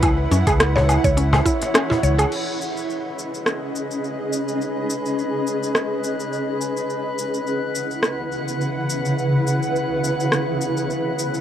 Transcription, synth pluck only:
X:1
M:4/4
L:1/16
Q:"Swing 16ths" 1/4=105
K:C#m
V:1 name="Synth pluck"
E z C G2 c2 c C z E z C E c G | z16 | z16 | z16 |
z16 |]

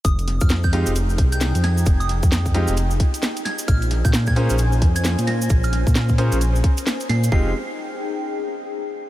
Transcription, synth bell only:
X:1
M:4/4
L:1/16
Q:"Swing 16ths" 1/4=132
K:Fm
V:1 name="Synth bell"
e'2 z f' z g'2 z4 g'2 z a'2 | z e' z12 a' z | f'2 z g' z a'2 z4 a'2 z b'2 | z f' z12 c'' z |
c''2 z12 z2 |]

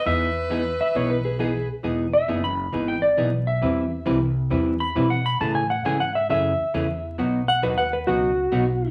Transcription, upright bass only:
X:1
M:4/4
L:1/8
Q:"Swing" 1/4=135
K:E
V:1 name="Upright bass" clef=bass
E,,4 B,,,4 | E,,,2 F,,,2 G,,,2 B,,,2 | E,,2 =C,,2 E,,2 B,,2 | A,,2 G,,2 F,, z E,,2 |
B,,,2 D,,2 C,,2 B,,,2 |]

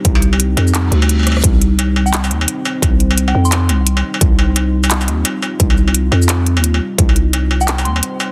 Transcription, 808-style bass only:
X:1
M:4/4
L:1/16
Q:"Swing 16ths" 1/4=173
K:Cm
V:1 name="808-style bass" clef=bass
C,,6 F,,4 D,,6 | C,,8- C,,2 E,,2 z4 | C,,6 F,,4 C,,4 z2 | C,,8- C,,2 E,,2 z4 |
C,,6 F,,4- F,, E,,3 z2 | C,,8- C,,2 E,,2 z4 |]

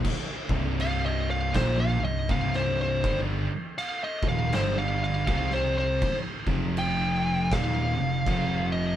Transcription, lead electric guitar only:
X:1
M:4/4
L:1/8
Q:"Swing" 1/4=80
K:Cm
V:1 name="Lead electric guitar"
z2 (3f e f (3c f e (3f c c | z2 (3f e f (3c f f (3f c c | z2 g2 f3 e |]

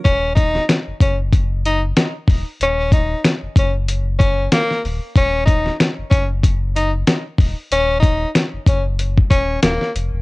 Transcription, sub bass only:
X:1
M:4/4
L:1/16
Q:"Swing 16ths" 1/4=94
K:Ebm
V:1 name="Sub bass" clef=bass
E,,,4 z G,,, G,,,6 z2 E,,, z | E,,,4 z G,,, G,,,6 z2 E,,, z | E,,,4 z G,,, G,,,6 z2 E,,, z | E,,,4 z G,,, G,,,4 E,,,2 E,,, z F,,, _F,,, |]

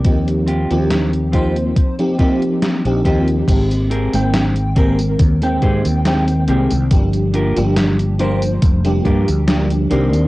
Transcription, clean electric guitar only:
X:1
M:4/4
L:1/16
Q:"Swing 16ths" 1/4=70
K:Ablyd
V:1 name="Clean electric guitar"
z2 [CFG] z3 [CFG] z3 [CFG] z3 [CFG] z | z2 [CGAB] z3 [CGAB] z3 [CGAc] z3 [CGAB] z | z2 [DFGB] z3 [DFGB] z3 [DFGB] z3 [DEBc]2 |]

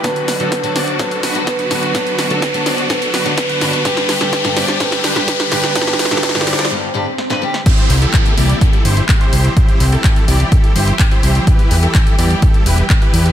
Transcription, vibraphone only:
X:1
M:4/4
L:1/8
Q:1/4=126
K:Clyd
V:1 name="Vibraphone"
B3 c B2 B2 | B3 c B2 B2 | B3 c B2 B2 | B3 c z4 |
z8 | z8 | z8 |]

